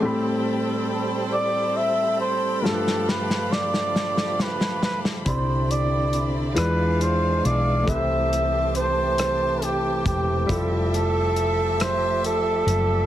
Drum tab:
HH |------------|------------|x-x-x-x-x-x-|x-x-x-x-x-x-|
SD |------------|oooooooooooo|------r-----|------r-----|
BD |------------|------------|o-----------|o---------o-|

HH |x-x-x-x-x-x-|
SD |------r-----|
BD |o-----------|